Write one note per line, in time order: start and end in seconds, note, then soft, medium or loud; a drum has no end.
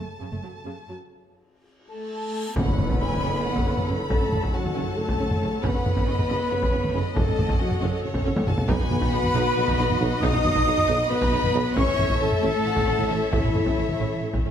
0.00 0.95 C#3 soft
0.00 0.96 A4 soft
0.00 0.96 A5 soft
0.20 0.25 F#2 soft
0.20 0.25 C#3 soft
0.31 0.37 F#1 soft
0.31 0.36 F#2 soft
0.31 0.36 A3 soft
0.43 0.47 F#2 soft
0.43 0.48 F#3 soft
0.65 0.69 F#2 soft
0.65 0.70 C#3 soft
0.88 0.92 F#2 soft
0.88 0.93 F#3 soft
0.99 reverse cymbal soft
1.89 2.52 A3 medium
1.89 2.52 A4 medium
1.89 2.57 A5 medium
1.89 2.52 A5 medium
2.55 2.61 F#1 medium
2.55 2.60 F#2 medium
2.55 3.18 F#2 medium
2.55 4.10 B3 medium
2.55 2.60 C#4 medium
2.55 7.13 C#4 medium
2.55 7.13 A4 medium
2.55 4.10 B4 medium
2.55 7.13 C#5 medium
2.55 2.97 F#5 medium
2.55 7.13 F#5 medium
2.55 4.09 B5 medium
2.55 4.10 B5 medium
2.55 taiko medium
2.55 tam-tam medium
2.55 impact medium
2.67 2.72 F#2 soft
2.67 2.71 C#4 soft
2.78 2.83 F#1 soft
2.78 2.83 F#2 medium
2.78 2.82 A3 soft
2.78 taiko low-mid medium
2.89 2.94 F#2 medium
2.89 2.94 C#4 medium
2.89 taiko medium
3.01 3.05 F#1 medium
3.01 3.05 F#2 soft
3.01 3.05 C#4 medium
3.01 3.45 G#5 medium
3.12 taiko low-mid soft
3.22 3.27 F#1 medium
3.22 3.27 F#2 medium
3.22 3.27 C#4 medium
3.44 3.49 F#1 soft
3.44 3.49 F#2 medium
3.44 3.49 A3 medium
3.44 3.88 F#5 medium
3.55 3.59 F#2 medium
3.55 3.59 C#4 medium
3.55 taiko medium
3.65 3.71 F#1 soft
3.65 3.70 F#2 medium
3.65 3.70 C#4 medium
3.76 3.81 F#2 medium
3.76 3.82 A3 medium
3.76 taiko low-mid soft
3.87 3.92 F#1 medium
3.87 3.92 F#2 medium
3.87 3.92 C#4 medium
3.87 4.54 B5 medium
4.09 4.14 F#1 medium
4.09 4.14 F#2 medium
4.09 4.53 A3 medium
4.09 4.14 C#4 medium
4.09 4.53 A4 medium
4.09 4.56 A5 medium
4.09 4.53 A5 medium
4.09 taiko medium
4.20 4.25 F#2 soft
4.20 4.25 C#4 soft
4.32 4.36 F#1 medium
4.32 4.37 F#2 medium
4.32 4.36 A3 medium
4.32 taiko low-mid medium
4.42 4.47 F#2 medium
4.42 4.47 C#4 medium
4.42 taiko medium
4.53 4.58 F#1 medium
4.53 4.58 F#2 medium
4.53 4.98 F#3 medium
4.53 4.58 C#4 medium
4.53 4.98 F#4 medium
4.53 4.98 F#5 medium
4.53 5.64 A5 medium
4.66 taiko low-mid medium
4.75 4.80 F#1 medium
4.75 4.81 F#2 medium
4.75 4.79 C#4 medium
4.96 5.02 F#1 medium
4.96 5.02 F#2 medium
4.96 5.02 A3 medium
4.96 5.64 A3 medium
4.96 5.63 A4 loud
4.96 5.63 A4 medium
4.96 5.63 A5 medium
4.96 5.61 A5 medium
5.08 5.13 F#2 medium
5.08 5.13 C#4 medium
5.08 taiko medium
5.19 5.23 F#1 soft
5.19 5.24 F#2 medium
5.19 5.24 C#4 medium
5.30 5.36 F#2 medium
5.30 5.35 A3 medium
5.30 taiko low-mid soft
5.41 5.46 F#1 medium
5.41 5.46 F#2 medium
5.41 5.45 C#4 medium
5.61 5.68 F#1 medium
5.61 5.68 F#2 medium
5.61 7.13 B3 medium
5.61 5.67 C#4 medium
5.61 7.13 B4 loud
5.61 7.16 B4 loud
5.61 6.08 F#5 medium
5.61 7.12 B5 medium
5.61 7.13 B5 medium
5.61 taiko medium
5.74 5.80 F#2 medium
5.74 5.79 C#4 medium
5.85 5.90 F#1 medium
5.85 5.90 F#2 medium
5.85 5.89 A3 medium
5.85 taiko low-mid medium
5.95 6.01 F#2 medium
5.95 5.99 C#4 medium
5.95 taiko medium
6.06 6.11 F#1 medium
6.06 6.12 F#2 medium
6.06 6.11 C#4 medium
6.06 6.50 D#5 medium
6.19 taiko low-mid medium
6.29 6.33 F#1 medium
6.29 6.34 F#2 medium
6.29 6.33 C#4 medium
6.50 6.55 F#1 medium
6.50 6.55 F#2 medium
6.50 6.55 A3 medium
6.50 6.95 C#5 medium
6.61 6.66 F#2 medium
6.61 6.66 C#4 medium
6.61 taiko medium
6.71 6.77 F#1 medium
6.71 6.78 F#2 medium
6.71 6.76 C#4 medium
6.82 6.88 F#2 medium
6.82 6.87 A3 medium
6.82 taiko low-mid soft
6.93 6.98 F#1 medium
6.93 6.99 F#2 medium
6.93 6.97 C#4 medium
6.93 8.04 D#5 medium
7.15 7.20 F#1 medium
7.15 7.21 F#2 medium
7.15 7.59 A3 medium
7.15 7.20 C#4 medium
7.15 8.65 C#4 medium
7.15 8.65 A4 medium
7.15 8.66 A4 medium
7.15 7.59 A4 loud
7.15 7.60 A4 medium
7.15 8.65 C#5 medium
7.15 11.72 F#5 medium
7.15 7.58 A5 medium
7.15 7.61 A5 medium
7.15 taiko loud
7.26 7.32 F#2 medium
7.26 7.31 C#4 soft
7.37 7.43 F#1 medium
7.37 7.43 F#2 medium
7.37 7.42 A3 medium
7.37 taiko low-mid medium
7.48 7.54 F#2 medium
7.48 7.53 C#4 medium
7.48 taiko medium
7.59 7.64 F#1 medium
7.59 7.65 F#2 medium
7.59 8.04 F#3 medium
7.59 7.64 C#4 medium
7.59 8.03 F#4 medium
7.59 8.04 F#4 medium
7.59 8.02 F#5 medium
7.59 8.04 F#5 medium
7.71 taiko low-mid medium
7.81 7.86 F#1 medium
7.81 7.87 F#2 medium
7.81 7.85 C#4 medium
8.03 8.08 F#1 medium
8.03 8.08 F#2 medium
8.03 8.08 A3 medium
8.03 8.47 C#5 medium
8.15 8.19 F#2 medium
8.15 8.19 C#4 loud
8.15 taiko medium
8.25 8.30 F#1 medium
8.25 8.30 F#2 medium
8.25 8.30 C#4 medium
8.36 8.41 F#2 medium
8.36 8.41 A3 medium
8.36 taiko high medium
8.47 8.52 F#1 medium
8.47 8.52 F#2 loud
8.47 8.52 C#4 medium
8.47 8.70 A5 medium
8.47 taiko low-mid medium
8.58 taiko low loud
8.67 8.74 B1 loud
8.67 10.19 B3 loud
8.67 11.76 D#4 medium
8.67 8.73 D#4 loud
8.67 11.76 F#4 loud
8.67 11.76 F#4 medium
8.67 11.76 B4 medium
8.67 10.18 B4 loud
8.67 10.19 B4 loud
8.67 9.12 G#5 medium
8.67 10.22 B5 loud
8.67 10.18 B5 loud
8.67 taiko loud
8.80 8.85 B1 medium
8.80 8.84 D#4 medium
8.91 8.96 B1 medium
8.91 8.96 B3 medium
8.91 taiko low-mid medium
9.01 9.06 B1 loud
9.01 9.06 D#4 loud
9.01 taiko medium
9.13 9.17 B1 medium
9.13 9.17 D#4 medium
9.13 9.57 F#5 medium
9.24 taiko low-mid medium
9.34 9.39 B1 loud
9.34 9.39 D#4 loud
9.56 9.61 B1 medium
9.56 9.60 B3 medium
9.56 11.76 D#5 loud
9.67 9.71 B1 loud
9.67 9.72 D#4 loud
9.67 taiko medium
9.77 9.82 B1 medium
9.77 9.83 B1 medium
9.77 9.83 D#4 medium
9.89 9.94 B1 medium
9.89 9.94 B3 medium
9.89 taiko low-mid medium
10.00 10.04 B1 loud
10.00 10.05 B1 loud
10.00 10.05 D#4 loud
10.21 10.27 B1 loud
10.21 11.09 D#4 loud
10.21 10.27 D#4 loud
10.21 11.09 D#5 loud
10.21 11.09 D#6 loud
10.21 11.11 D#6 loud
10.21 taiko loud
10.33 10.38 B1 medium
10.33 10.38 D#4 medium
10.44 10.49 B1 medium
10.44 10.49 B3 medium
10.44 taiko low-mid medium
10.54 10.59 B1 loud
10.54 10.59 D#4 loud
10.54 taiko medium
10.65 10.71 B1 medium
10.65 10.72 B1 medium
10.65 10.70 D#4 medium
10.78 taiko low-mid medium
10.87 10.92 B1 loud
10.87 10.93 B1 loud
10.87 10.92 D#4 loud
11.09 11.15 B1 medium
11.09 11.14 B3 medium
11.09 11.75 B3 loud
11.09 11.75 B4 loud
11.09 11.77 B4 loud
11.09 11.78 B5 loud
11.09 11.76 B5 loud
11.20 11.27 B1 loud
11.20 11.25 D#4 loud
11.20 taiko loud
11.32 11.37 B1 medium
11.32 11.38 B1 medium
11.32 11.37 D#4 medium
11.43 11.48 B1 medium
11.43 11.47 B3 medium
11.43 taiko low-mid medium
11.54 11.59 B1 loud
11.54 11.58 D#4 loud
11.76 11.81 A1 loud
11.76 11.82 A1 loud
11.76 11.80 C#4 loud
11.76 12.21 C#4 loud
11.76 14.51 E4 loud
11.76 14.51 A4 loud
11.76 12.20 C#5 loud
11.76 14.51 C#5 loud
11.76 12.20 C#5 loud
11.76 14.51 E5 loud
11.76 12.64 E5 loud
11.76 12.19 C#6 loud
11.76 12.21 C#6 loud
11.76 taiko loud
11.87 11.93 A1 medium
11.87 11.91 C#4 medium
11.98 12.04 A1 medium
11.98 12.02 A3 medium
11.98 taiko low-mid medium
12.09 12.15 A1 medium
12.09 12.14 C#4 medium
12.09 taiko medium
12.20 12.25 A1 medium
12.20 13.30 A3 loud
12.20 12.24 C#4 medium
12.20 13.32 A4 loud
12.20 13.30 A4 loud
12.20 13.32 A5 loud
12.20 13.34 A5 loud
12.32 taiko low-mid medium
12.42 12.47 A1 loud
12.42 12.48 A1 medium
12.42 12.46 C#4 medium
12.64 12.70 A1 medium
12.64 12.69 A3 medium
12.64 13.10 F#5 medium
12.76 12.81 A1 medium
12.76 12.80 C#4 medium
12.76 taiko medium
12.86 12.93 A1 medium
12.86 12.91 C#4 medium
12.98 13.05 A1 medium
12.98 13.02 A3 medium
12.98 taiko low-mid medium
13.09 13.15 A1 medium
13.09 13.15 A1 loud
13.09 13.13 C#4 medium
13.09 13.33 E5 medium
13.32 13.37 A1 medium
13.32 14.51 E3 medium
13.32 13.37 C#4 medium
13.32 14.51 E4 medium
13.32 14.51 C#5 medium
13.32 14.51 E5 medium
13.32 taiko loud
13.43 13.49 A1 medium
13.43 13.48 C#4 medium
13.55 13.60 A1 medium
13.55 13.59 A3 medium
13.55 taiko low-mid medium
13.66 13.71 A1 medium
13.66 13.71 C#4 medium
13.66 taiko medium
13.77 13.82 A1 medium
13.77 13.81 C#4 medium
13.89 taiko low-mid medium
14.00 14.04 A1 medium
14.00 14.05 A1 medium
14.00 14.04 C#4 medium
14.22 14.26 A1 medium
14.22 14.27 A1 medium
14.22 14.26 A3 medium
14.33 14.38 A1 medium
14.33 14.38 C#4 medium
14.33 taiko medium
14.45 14.49 A1 medium
14.45 14.50 C#4 medium